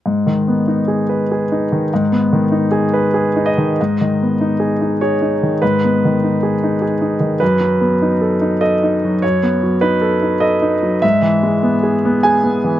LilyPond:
\new Staff \with { instrumentName = "Grand piano" } { \time 3/4 \key gis \minor \tempo 4 = 99 << { r2. | r2 r8 dis''8~ | dis''2 cis''4 | b'2 r4 |
b'2 dis''4 | cis''4 b'4 dis''4 | e''2 gis''4 | } \\ { \tuplet 3/2 { gis,8 dis8 b8 dis'8 gis'8 b'8 gis'8 dis'8 dis8 } | \tuplet 3/2 { gis,8 b8 dis8 dis'8 gis'8 b'8 gis'8 dis'8 dis8 } | \tuplet 3/2 { gis,8 dis8 b8 dis'8 gis'8 dis'8 gis'8 dis'8 dis8 } | \tuplet 3/2 { gis,8 b8 dis8 dis'8 gis'8 dis'8 gis'8 dis'8 dis8 } |
\tuplet 3/2 { fis,8 fis8 b8 dis'8 a'8 dis'8 a'8 dis'8 fis8 } | \tuplet 3/2 { fis,8 b8 fis8 dis'8 a'8 dis'8 a'8 dis'8 fis8 } | \tuplet 3/2 { gis,8 e8 gis8 b8 gis'8 b8 gis'8 b8 e8 } | } >> }